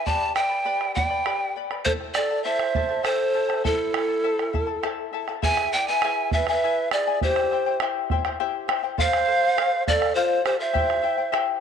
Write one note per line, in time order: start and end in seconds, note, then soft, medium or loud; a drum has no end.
0.06 0.36 G4 medium
0.06 0.35 B4 medium
0.06 0.36 D5 loud
0.06 0.35 D5 medium
0.06 0.34 G5 medium
0.06 0.35 A5 loud
0.06 0.36 B5 medium
0.06 bombo low medium
0.22 bombo rim soft
0.35 0.50 B4 medium
0.35 0.49 D5 medium
0.35 0.41 E5 medium
0.35 0.51 G5 medium
0.35 0.92 G5 loud
0.35 0.48 B5 medium
0.35 bombo rim medium
0.40 0.92 D5 medium
0.49 0.64 B4 soft
0.49 0.64 D5 medium
0.49 0.65 B5 medium
0.49 bombo rim soft
0.65 0.95 G4 medium
0.65 0.94 B4 medium
0.65 0.94 D5 medium
0.65 0.93 G5 medium
0.65 0.95 B5 medium
0.81 bombo rim medium
0.94 1.09 B4 medium
0.94 1.09 D5 medium
0.94 1.52 D5 medium
0.94 1.10 G5 medium
0.94 1.51 G5 medium
0.94 1.09 B5 medium
0.94 bombo low medium
1.10 1.25 B4 soft
1.10 1.26 D5 soft
1.10 1.25 B5 medium
1.10 bombo rim soft
1.26 1.56 G4 medium
1.26 1.55 B4 medium
1.26 1.55 D5 medium
1.26 1.55 G5 medium
1.26 1.56 B5 medium
1.26 bombo rim medium
1.41 bombo rim soft
1.56 1.71 B4 medium
1.56 1.70 D5 medium
1.56 1.71 G5 medium
1.56 1.70 B5 medium
1.71 1.85 B4 soft
1.71 1.85 D5 soft
1.71 1.85 B5 medium
1.71 bombo rim medium
1.85 2.15 E4 medium
1.85 1.92 A4 medium
1.85 2.15 A4 medium
1.85 1.92 C5 medium
1.85 2.15 C5 medium
1.85 2.14 E5 medium
1.85 2.15 A5 medium
1.85 bombo low medium
2.01 bombo rim soft
2.14 2.31 E4 medium
2.14 2.43 A4 medium
2.14 2.30 A4 medium
2.14 2.42 D5 medium
2.14 2.30 E5 medium
2.14 2.29 A5 medium
2.14 bombo rim medium
2.30 2.44 E4 soft
2.30 2.45 A4 soft
2.30 2.45 A5 medium
2.30 bombo rim soft
2.44 2.74 E4 medium
2.44 2.74 A4 medium
2.44 3.07 C5 medium
2.44 2.75 C5 medium
2.44 3.06 E5 loud
2.44 2.74 E5 medium
2.44 2.75 A5 medium
2.59 bombo rim medium
2.75 2.89 E4 medium
2.75 2.88 A4 medium
2.75 2.90 E5 medium
2.75 2.87 A5 medium
2.75 bombo low medium
2.89 3.03 E4 soft
2.89 3.03 A4 soft
2.89 3.03 A5 medium
2.89 bombo rim soft
3.03 3.33 E4 medium
3.03 3.33 A4 medium
3.03 3.65 A4 medium
3.03 3.34 C5 medium
3.03 3.64 C5 medium
3.03 3.33 E5 medium
3.03 3.34 A5 medium
3.03 bombo rim medium
3.20 bombo rim soft
3.34 3.49 E4 medium
3.34 3.48 A4 medium
3.34 3.49 E5 medium
3.34 3.48 A5 medium
3.49 3.63 E4 soft
3.49 3.64 A4 soft
3.49 3.63 A5 medium
3.49 bombo rim medium
3.64 3.94 E4 medium
3.64 4.80 E4 medium
3.64 3.94 A4 medium
3.64 4.80 A4 medium
3.64 3.94 C5 medium
3.64 3.93 E5 medium
3.64 3.94 A5 medium
3.64 bombo low medium
3.94 4.09 E4 medium
3.94 4.08 A4 medium
3.94 4.09 E5 medium
3.94 4.07 A5 medium
3.94 bombo rim medium
4.08 4.23 E4 soft
4.08 4.23 A4 soft
4.08 4.24 A5 medium
4.08 bombo rim soft
4.24 4.53 E4 medium
4.24 4.53 A4 medium
4.24 4.54 C5 medium
4.24 4.52 E5 medium
4.24 4.54 A5 medium
4.39 bombo rim medium
4.53 4.67 E4 medium
4.53 4.66 A4 medium
4.53 4.68 E5 medium
4.53 4.66 A5 medium
4.53 bombo low medium
4.67 4.82 E4 soft
4.67 4.82 A4 medium
4.67 4.82 A5 medium
4.83 5.12 E4 medium
4.83 5.13 A4 medium
4.83 5.13 C5 medium
4.83 5.11 E5 medium
4.83 5.13 A5 medium
4.83 bombo rim medium
4.98 bombo rim soft
5.13 5.28 E4 medium
5.13 5.27 A4 medium
5.13 5.28 E5 medium
5.13 5.27 A5 medium
5.13 bombo rim soft
5.28 5.41 E4 soft
5.28 5.42 A4 medium
5.28 5.43 A5 medium
5.28 bombo rim soft
5.42 5.72 E4 medium
5.42 5.72 G#4 medium
5.42 5.72 B4 medium
5.42 5.72 E5 medium
5.42 5.76 E5 loud
5.42 5.73 G#5 loud
5.42 5.74 G#5 loud
5.42 bombo low medium
5.57 bombo rim medium
5.72 5.88 E4 medium
5.72 5.88 B4 medium
5.72 5.92 D5 medium
5.72 5.88 E5 medium
5.72 5.89 G5 loud
5.72 5.88 G#5 medium
5.72 bombo rim soft
5.87 6.03 E4 soft
5.87 6.03 B4 medium
5.87 6.33 E5 medium
5.87 6.32 G#5 loud
5.87 6.03 G#5 medium
5.87 bombo rim soft
6.02 6.33 E4 medium
6.02 6.32 G#4 medium
6.02 6.33 B4 loud
6.02 6.32 E5 medium
6.02 6.33 G#5 medium
6.02 bombo rim medium
6.31 6.47 E4 medium
6.31 6.48 B4 medium
6.31 6.47 B4 medium
6.31 6.46 E5 medium
6.31 6.47 E5 medium
6.31 6.48 G#5 medium
6.31 bombo rim soft
6.31 bombo low medium
6.47 6.63 E4 soft
6.47 6.90 B4 medium
6.47 6.63 B4 soft
6.47 6.89 E5 loud
6.47 6.63 G#5 medium
6.47 bombo rim medium
6.63 6.91 E4 medium
6.63 6.92 G#4 medium
6.63 6.92 B4 medium
6.63 6.91 E5 medium
6.63 6.92 G#5 medium
6.91 7.06 E4 medium
6.91 7.20 G#4 medium
6.91 7.07 B4 medium
6.91 7.19 D5 medium
6.91 7.06 E5 medium
6.91 7.06 G#5 medium
6.91 bombo rim medium
7.07 7.22 E4 soft
7.07 7.22 B4 soft
7.07 7.21 G#5 medium
7.21 7.51 E4 medium
7.21 7.51 G4 medium
7.21 7.77 G4 medium
7.21 7.77 C5 medium
7.21 7.51 C5 medium
7.21 7.50 E5 medium
7.21 7.52 G5 medium
7.21 bombo low medium
7.36 bombo rim medium
7.51 7.66 E4 medium
7.51 7.66 C5 medium
7.51 7.66 E5 medium
7.51 7.65 G5 medium
7.51 bombo rim soft
7.66 7.81 E4 soft
7.66 7.81 C5 medium
7.66 7.80 G5 medium
7.66 bombo rim soft
7.80 8.10 E4 medium
7.80 8.10 G4 medium
7.80 8.10 C5 medium
7.80 8.10 E5 medium
7.80 8.11 G5 loud
7.80 bombo rim medium
8.10 8.25 E4 medium
8.10 8.25 C5 medium
8.10 8.25 E5 medium
8.10 8.24 G5 medium
8.10 bombo rim soft
8.10 bombo low medium
8.25 8.39 E4 medium
8.25 8.39 C5 medium
8.25 8.39 G5 medium
8.25 bombo rim medium
8.40 8.68 E4 medium
8.40 8.69 G4 medium
8.40 8.68 C5 medium
8.40 8.67 E5 medium
8.40 8.68 G5 medium
8.68 8.83 E4 medium
8.68 8.83 C5 medium
8.68 8.83 E5 medium
8.68 8.82 G5 medium
8.68 bombo rim medium
8.83 8.98 E4 soft
8.83 8.97 C5 medium
8.83 8.98 G5 medium
8.98 9.26 A4 medium
8.98 9.27 C5 medium
8.98 9.83 C5 loud
8.98 9.27 F5 medium
8.98 9.83 F5 loud
8.98 bombo low medium
9.13 bombo rim medium
9.27 9.42 A4 medium
9.27 9.42 C5 medium
9.27 9.42 F5 medium
9.27 bombo rim soft
9.43 9.56 C5 soft
9.43 9.57 F5 medium
9.43 bombo rim soft
9.56 9.86 A4 medium
9.56 9.86 C5 medium
9.56 9.87 F5 medium
9.56 bombo rim medium
9.87 10.01 A4 medium
9.87 10.17 A4 medium
9.87 10.01 C5 medium
9.87 10.17 D5 loud
9.87 10.00 F5 medium
9.87 bombo rim soft
9.87 bombo low medium
10.01 10.15 C5 soft
10.01 10.16 F5 medium
10.01 bombo rim medium
10.15 10.43 F4 medium
10.15 10.43 A4 medium
10.15 10.45 C5 medium
10.15 10.44 C5 medium
10.15 10.45 F5 medium
10.44 10.58 G4 medium
10.44 10.59 A4 medium
10.44 10.59 C5 medium
10.44 10.58 C5 medium
10.44 10.58 F5 medium
10.44 bombo rim medium
10.59 11.44 C5 medium
10.59 10.73 C5 soft
10.59 11.44 E5 medium
10.59 10.73 F5 medium
10.73 11.02 E4 medium
10.73 11.03 G4 medium
10.73 11.02 C5 medium
10.73 11.01 E5 medium
10.73 11.03 G5 medium
10.73 bombo rim soft
10.73 bombo low medium
10.90 bombo rim medium
11.02 11.18 E4 medium
11.02 11.17 C5 medium
11.02 11.18 E5 medium
11.02 11.16 G5 medium
11.02 bombo rim soft
11.18 11.31 E4 soft
11.18 11.32 C5 medium
11.18 11.33 G5 medium
11.32 11.60 E4 loud
11.32 11.60 G4 medium
11.32 11.60 C5 loud
11.32 11.60 E5 medium
11.32 11.60 G5 medium
11.32 bombo rim medium